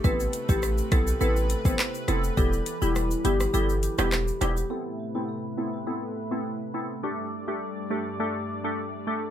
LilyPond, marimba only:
\new Staff \with { instrumentName = "Marimba" } { \time 4/4 \key a \minor \tempo 4 = 103 b'8 r16 g'8 r16 a'8 b'16 r8 c''16 r8 a'16 r16 | a'8 r16 e'8 r16 g'8 a'16 r8 g'16 r4 | r1 | r1 | }